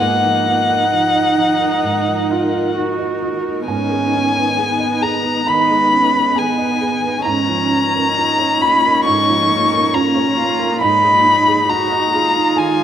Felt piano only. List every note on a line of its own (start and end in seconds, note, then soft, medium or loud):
0.00 1.81 G#2 soft
0.00 2.73 F#5 medium
0.23 0.60 F3 soft
0.46 0.83 D#4 soft
0.69 1.07 A#4 soft
0.92 1.30 F3 soft
1.15 1.52 D#5 soft
1.37 1.75 F3 soft
1.60 1.98 A#4 soft
1.83 3.64 G#2 soft
2.07 2.44 F3 soft
2.29 2.67 D#4 soft
2.53 2.90 A#4 soft
2.75 3.13 F4 soft
2.98 3.36 D#5 soft
3.22 3.59 F4 soft
3.46 3.69 A#4 soft
3.68 5.44 G#2 soft
3.68 4.99 G#5 medium
3.90 4.27 G#3 soft
4.13 4.49 D#4 soft
4.35 4.71 B4 soft
4.57 4.94 G#4 soft
4.79 5.16 D#5 soft
5.01 5.38 G#4 soft
5.01 5.45 A#5 medium
5.23 5.60 B4 soft
5.47 5.83 D#3 soft
5.47 6.33 B5 medium
5.70 6.06 G#3 soft
5.93 6.29 D#4 soft
6.13 6.50 B4 soft
6.36 6.72 G#4 soft
6.36 7.22 G#5 medium
6.58 6.95 D#5 soft
6.81 7.17 G#4 soft
7.04 7.27 B4 soft
7.25 9.01 G#2 soft
7.25 8.57 A#5 medium
7.48 7.85 F3 soft
7.71 8.08 C#4 soft
7.95 8.31 A#4 soft
8.17 8.53 F4 soft
8.38 8.74 C#5 soft
8.62 8.97 F4 soft
8.62 9.03 B5 medium
8.85 9.20 A#4 soft
9.06 10.78 G#2 soft
9.06 9.89 C#6 medium
9.29 9.63 F3 soft
9.52 9.86 C#4 soft
9.73 10.07 A#4 soft
9.94 10.29 F4 soft
9.94 10.77 A#5 medium
10.15 10.50 C#5 soft
10.39 10.73 F4 soft
10.59 10.81 A#4 soft
10.81 12.54 G#2 soft
10.81 11.65 B5 medium
11.03 11.38 G#3 soft
11.25 11.60 D#4 soft
11.48 11.83 G#4 soft
11.69 12.04 D#4 soft
11.69 12.53 A#5 medium
11.90 12.26 D#5 soft
12.14 12.48 G#4 soft
12.36 12.71 D#4 soft
12.56 12.84 D#3 soft
12.56 12.84 G#5 medium
12.80 12.84 G#3 soft